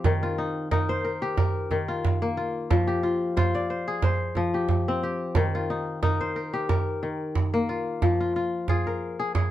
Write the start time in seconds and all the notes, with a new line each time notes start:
Already playing: C4 G4
0.04 D#3, djembe slap, djembe tone, djembe bass
0.23 F4
0.38 D#4
0.71 D#4 A#4, djembe slap, djembe bass
0.89 C5, djembe tone
1.04 A#4
1.22 G4
1.37 A#4, djembe slap, djembe bass
1.56 djembe slap
1.71 D#3, djembe tone
1.88 F4
2.05 djembe slap, djembe bass
2.22 A#3
2.37 F4, djembe slap
2.70 F3, djembe slap, djembe tone, djembe bass
2.87 G4
3.03 F4
3.37 F4 C5, djembe slap, djembe bass
3.54 D5, djembe tone
3.70 C5
3.88 G#4
4.02 C5, djembe slap, djembe bass
4.20 djembe slap
4.35 F3, djembe tone
4.54 G4
4.69 djembe slap, djembe bass
4.88 C4
5.02 G4, djembe slap
5.35 D#3, djembe slap, djembe tone, djembe bass
5.54 F4, djembe slap
5.70 D#4
5.87 djembe slap
6.03 D#4 A#4, djembe slap, djembe bass
6.21 C5, djembe slap, djembe tone
6.36 A#4
6.54 G4
6.69 A#4, djembe slap, djembe bass
7.03 D#3
7.35 djembe slap, djembe bass
7.54 A#3
7.69 F4
7.87 djembe slap
8.02 F3, djembe slap, djembe tone, djembe bass
8.20 F4
8.36 F4
8.68 F4 G#4, djembe slap, djembe bass
8.86 A#4, djembe tone
9.19 G#4
9.35 G#4, djembe slap, djembe bass